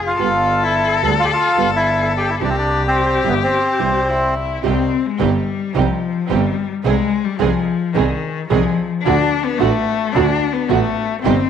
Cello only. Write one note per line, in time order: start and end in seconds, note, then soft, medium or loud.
0.00 0.19 G#4 medium
0.20 2.43 A4 medium
2.41 4.10 G4 medium
4.09 4.64 E4 medium
4.65 5.08 C4 medium
5.06 5.22 G#3 medium
5.21 5.77 G3 medium
5.75 6.32 F3 medium
6.30 6.72 G3 medium
6.85 7.26 G#3 medium
7.25 7.39 G3 medium
7.38 7.94 F3 medium
7.93 8.48 D#3 medium
8.49 8.88 F3 medium
9.03 9.46 D4 medium
9.45 9.60 B3 medium
9.58 10.14 A3 medium
10.13 10.54 D4 medium
10.53 10.70 B3 medium
10.69 11.22 A3 medium
11.23 11.50 C4 medium